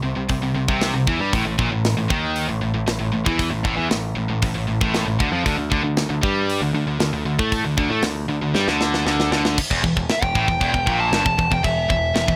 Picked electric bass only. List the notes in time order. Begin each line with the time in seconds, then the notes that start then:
0.03 C2
0.16 C2
0.29 C2
0.41 C2
0.54 C2
0.69 C2
0.94 C2
1.07 E2
1.19 G2
1.33 A1
1.45 A1
1.59 A#1
1.71 A1
1.97 A1
2.10 D#2
2.49 A1
2.62 A1
2.74 A1
2.87 A1
3.00 A1
3.14 A1
3.26 E2
3.52 A1
3.65 A1
3.78 E2
3.91 A1
4.17 A1
4.30 A1
4.43 A1
4.55 A1
4.68 A1
4.81 A1
5.06 A1
5.20 D2
5.32 F2
5.46 D2
5.58 D2
5.72 D2
5.83 D2
6.09 D2
6.23 G2
6.61 D2
6.73 D2
6.87 D2
6.99 D2
7.13 D2
7.25 D2
7.39 A2
7.64 D2
7.78 D2
7.90 A2
8.03 D2
8.28 D2
8.42 D2
8.54 G2
8.68 D2
9.06 D2
9.31 D2
9.71 E1
9.84 E1
9.96 E1
10.09 muted picked electric bass stroke
10.22 E1
10.35 A1
10.48 E1
10.61 E1
10.74 E1
10.87 A#1
11.12 G1
11.26 E1
11.39 E1
11.52 E1
11.64 E1
11.90 E1
12.15 E1
12.28 E1